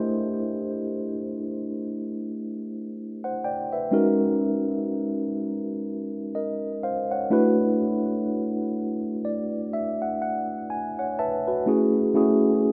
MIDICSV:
0, 0, Header, 1, 2, 480
1, 0, Start_track
1, 0, Tempo, 967742
1, 24, Time_signature, 4, 2, 24, 8
1, 6310, End_track
2, 0, Start_track
2, 0, Title_t, "Tine electric piano"
2, 0, Program_c, 0, 4
2, 0, Control_c, 0, 64, 127
2, 0, Note_on_c, 0, 57, 88
2, 0, Note_on_c, 0, 62, 86
2, 0, Note_on_c, 0, 64, 88
2, 0, Note_on_c, 0, 67, 86
2, 0, Note_on_c, 0, 70, 56
2, 0, Note_on_c, 0, 72, 103
2, 0, Note_on_c, 0, 75, 66
2, 558, Note_off_c, 0, 57, 0
2, 560, Note_off_c, 0, 62, 0
2, 562, Note_off_c, 0, 64, 0
2, 563, Note_off_c, 0, 67, 0
2, 565, Note_off_c, 0, 72, 0
2, 1608, Note_on_c, 0, 78, 72
2, 1611, Note_on_c, 0, 72, 58
2, 1702, Note_off_c, 0, 78, 0
2, 1703, Note_off_c, 0, 72, 0
2, 1709, Note_on_c, 0, 79, 72
2, 1712, Note_on_c, 0, 74, 63
2, 1839, Note_off_c, 0, 79, 0
2, 1841, Note_off_c, 0, 74, 0
2, 1848, Note_on_c, 0, 76, 66
2, 1851, Note_on_c, 0, 71, 57
2, 1941, Note_on_c, 0, 56, 85
2, 1944, Note_on_c, 0, 61, 75
2, 1946, Note_on_c, 0, 63, 78
2, 1950, Note_on_c, 0, 66, 76
2, 1951, Control_c, 0, 64, 0
2, 1952, Note_off_c, 0, 75, 0
2, 1953, Note_off_c, 0, 70, 0
2, 1953, Note_on_c, 0, 70, 98
2, 2051, Control_c, 0, 64, 127
2, 2074, Note_off_c, 0, 76, 0
2, 2075, Note_off_c, 0, 71, 0
2, 2601, Note_off_c, 0, 56, 0
2, 2602, Note_off_c, 0, 61, 0
2, 2603, Note_off_c, 0, 63, 0
2, 2605, Note_off_c, 0, 66, 0
2, 2607, Note_off_c, 0, 70, 0
2, 3150, Note_on_c, 0, 75, 69
2, 3153, Note_on_c, 0, 70, 55
2, 3375, Note_off_c, 0, 75, 0
2, 3377, Note_off_c, 0, 70, 0
2, 3390, Note_on_c, 0, 77, 75
2, 3393, Note_on_c, 0, 72, 63
2, 3519, Note_off_c, 0, 77, 0
2, 3521, Note_off_c, 0, 72, 0
2, 3529, Note_on_c, 0, 78, 69
2, 3532, Note_on_c, 0, 73, 58
2, 3623, Note_on_c, 0, 57, 100
2, 3626, Note_on_c, 0, 62, 83
2, 3629, Note_on_c, 0, 64, 87
2, 3631, Control_c, 0, 64, 0
2, 3631, Note_on_c, 0, 66, 86
2, 3635, Note_on_c, 0, 71, 109
2, 3709, Control_c, 0, 64, 127
2, 3754, Note_off_c, 0, 78, 0
2, 3756, Note_off_c, 0, 73, 0
2, 4399, Note_off_c, 0, 57, 0
2, 4401, Note_off_c, 0, 62, 0
2, 4402, Note_off_c, 0, 64, 0
2, 4403, Note_off_c, 0, 66, 0
2, 4405, Note_off_c, 0, 71, 0
2, 4587, Note_on_c, 0, 74, 74
2, 4809, Note_off_c, 0, 74, 0
2, 4828, Note_on_c, 0, 76, 77
2, 4956, Note_off_c, 0, 76, 0
2, 4969, Note_on_c, 0, 78, 69
2, 5060, Note_off_c, 0, 78, 0
2, 5068, Note_on_c, 0, 78, 77
2, 5290, Note_off_c, 0, 78, 0
2, 5308, Note_on_c, 0, 80, 77
2, 5451, Note_on_c, 0, 78, 72
2, 5452, Note_on_c, 0, 73, 60
2, 5529, Note_off_c, 0, 80, 0
2, 5543, Note_off_c, 0, 78, 0
2, 5544, Note_off_c, 0, 73, 0
2, 5550, Note_on_c, 0, 76, 75
2, 5550, Note_on_c, 0, 81, 75
2, 5553, Note_on_c, 0, 71, 61
2, 5680, Note_off_c, 0, 76, 0
2, 5681, Note_off_c, 0, 71, 0
2, 5691, Note_on_c, 0, 71, 68
2, 5694, Note_on_c, 0, 66, 56
2, 5770, Note_off_c, 0, 81, 0
2, 5784, Note_on_c, 0, 57, 80
2, 5787, Note_off_c, 0, 66, 0
2, 5787, Note_on_c, 0, 61, 73
2, 5791, Control_c, 0, 64, 0
2, 5791, Note_on_c, 0, 64, 71
2, 5793, Note_on_c, 0, 66, 73
2, 5797, Note_on_c, 0, 68, 94
2, 5891, Control_c, 0, 64, 127
2, 5915, Note_off_c, 0, 71, 0
2, 5958, Note_off_c, 0, 57, 0
2, 5960, Note_off_c, 0, 61, 0
2, 5962, Note_off_c, 0, 64, 0
2, 5963, Note_off_c, 0, 66, 0
2, 5965, Note_off_c, 0, 68, 0
2, 6023, Note_on_c, 0, 57, 90
2, 6027, Note_on_c, 0, 61, 79
2, 6029, Note_on_c, 0, 64, 81
2, 6033, Note_on_c, 0, 66, 84
2, 6035, Note_on_c, 0, 68, 98
2, 6310, Note_off_c, 0, 57, 0
2, 6310, Note_off_c, 0, 61, 0
2, 6310, Note_off_c, 0, 64, 0
2, 6310, Note_off_c, 0, 66, 0
2, 6310, Note_off_c, 0, 68, 0
2, 6310, End_track
0, 0, End_of_file